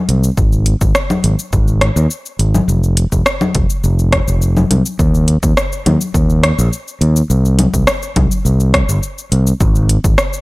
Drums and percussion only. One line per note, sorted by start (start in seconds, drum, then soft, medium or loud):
0.09 closed hi-hat medium
0.24 cabasa medium
0.37 kick loud
0.37 cabasa soft
0.52 cabasa soft
0.66 closed hi-hat medium
0.81 kick loud
0.81 cabasa medium
0.95 cross-stick medium
0.95 cabasa soft
1.10 low conga medium
1.10 cabasa soft
1.24 closed hi-hat medium
1.39 cabasa medium
1.53 kick medium
1.53 cabasa soft
1.68 cabasa soft
1.81 cross-stick medium
1.81 closed hi-hat medium
1.97 cabasa medium
2.11 cabasa medium
2.26 cabasa soft
2.39 closed hi-hat medium
2.55 low conga medium
2.55 cabasa medium
2.69 cabasa soft
2.84 cabasa soft
2.97 closed hi-hat loud
3.12 kick medium
3.12 cabasa medium
3.26 cross-stick medium
3.26 cabasa soft
3.41 low conga medium
3.41 cabasa soft
3.55 kick loud
3.55 closed hi-hat medium
3.70 cabasa medium
3.84 cabasa soft
3.99 cabasa soft
4.13 kick medium
4.13 cross-stick medium
4.13 closed hi-hat medium
4.28 cabasa medium
4.42 cabasa medium
4.57 low conga medium
4.57 cabasa soft
4.71 closed hi-hat medium
4.71 low conga medium
4.86 cabasa medium
4.99 kick loud
4.99 cabasa medium
5.15 cabasa soft
5.28 closed hi-hat loud
5.43 kick loud
5.43 cabasa medium
5.57 cross-stick medium
5.57 cabasa medium
5.73 cabasa soft
5.86 closed hi-hat medium
5.86 low conga medium
6.01 cabasa medium
6.14 kick loud
6.14 cabasa medium
6.30 cabasa soft
6.43 cross-stick medium
6.43 closed hi-hat medium
6.59 cabasa medium
6.73 cabasa medium
6.88 cabasa soft
7.01 closed hi-hat medium
7.16 cabasa medium
7.30 cabasa medium
7.45 cabasa soft
7.59 closed hi-hat medium
7.59 low conga medium
7.74 kick medium
7.74 cabasa medium
7.87 cross-stick medium
7.87 cabasa medium
8.03 cabasa soft
8.16 kick loud
8.16 closed hi-hat medium
8.16 low conga medium
8.31 cabasa medium
8.46 cabasa medium
8.60 cabasa soft
8.74 kick loud
8.74 cross-stick medium
8.74 closed hi-hat medium
8.89 cabasa medium
9.03 cabasa medium
9.18 cabasa soft
9.32 closed hi-hat medium
9.47 cabasa medium
9.61 kick loud
9.61 cabasa medium
9.76 cabasa soft
9.89 closed hi-hat medium
10.04 kick loud
10.04 cabasa medium
10.18 cross-stick medium
10.18 cabasa medium
10.33 cabasa soft